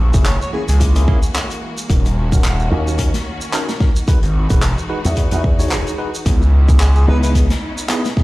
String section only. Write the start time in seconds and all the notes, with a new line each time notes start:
Already playing: E3 G#3 A#3 F#4
1.90 D#3 C#4 F#4
4.08 E3 G#3 D#4 F#4
6.26 B3 C#4 D#4 E4